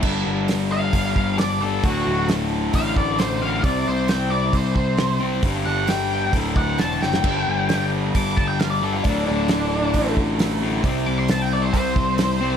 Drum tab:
CC |x---------------|----------------|----------------|----------------|
HH |----o---o---o---|o---o---o---o---|o---o---o---o---|o---o---o---o---|
SD |----o-------o---|----o-------o---|----o-------o---|----o-------o-oo|
BD |o-------o-o-----|o-------o-o-----|o-------o-o-----|o-------o-o-----|

CC |x---------------|----------------|----------------|
HH |----o---o---o---|o---o---o---o---|o---o---o---o---|
SD |----o-------o---|----o-------o---|----o-------o---|
BD |o-------o-o-----|o-------o-o-----|o-------o-o-----|